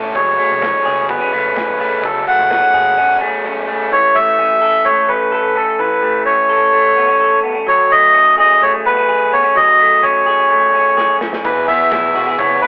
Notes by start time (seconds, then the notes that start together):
Already playing: E1 E3 A3 C#4 E4 A4
0.15 F#1 F#3 A3 C#4 G#4 C#5, kick, closed hi-hat
0.38 A3 C#4 G#4, open hi-hat
0.50 F#1
0.61 F#3 A3 C#4 G#4, kick, snare, closed hi-hat
0.85 F#1 A3 C#4 G#4, open hi-hat
1.08 F#3 A3 B3 C#4 G#4 B4, kick, closed hi-hat
1.20 C#4
1.32 F#1 A3 C#4 G#4, open hi-hat
1.56 E1 F#3 A3 C#4 G#4, kick, snare, closed hi-hat
1.79 E1 A3 C#4 G#4, open hi-hat
2.03 F#1 F#3 A3 C#4 G#4 A4, kick, closed hi-hat
2.27 A3 C#4 G#4 F#5, open hi-hat
2.39 F#1
2.50 F#3 A3 B3 C#4 G#4, kick, snare, closed hi-hat
2.63 C#4
2.73 F#1 A3 C#4 G#4, open hi-hat
2.97 F#3 A3 C#4 G#4
3.21 A3 C#4 G#4
3.44 F#3 A3 C#4 G#4
3.68 A3 C#4 G#4
3.92 E3 C#5
4.15 A3 E5
4.39 C#4
4.62 A4
4.85 A3 C#5
5.09 C#4 B4
5.32 A4
5.55 C#4 A4
5.79 E3 B4
6.02 A3
6.26 C#4 C#5
6.49 A4
6.73 A3
6.96 B3
7.08 C#4
7.20 A4
7.44 B3
7.55 C#4
7.67 F#3 C#5
7.91 A3 D#5
8.14 C#4
8.38 G#4 D#5
8.62 A3 C#5
8.85 B3 B4
8.97 C#4
9.08 G#4
9.32 B3 C#5
9.44 C#4
9.55 F#3 D#5
9.79 A3
10.03 C#4 C#5
10.26 G#4
10.50 A3
10.73 C#4
10.97 G#4, snare
11.21 C#4, snare
11.33 snare
11.44 E1 E3 B3 E4 G#4 B4, kick, closed hi-hat, tambourine
11.68 B3 E4 G#4 E5, open hi-hat, tambourine
11.91 B1 E3 B3 E4 G#4, kick, snare, tambourine
12.14 E1 B3 E4 F#4 G#4, open hi-hat, tambourine
12.27 G#4
12.38 F#1 E3 B3 E4 G#4 C#5, kick, closed hi-hat, tambourine
12.62 G#1 E4 G#4 B4, open hi-hat, tambourine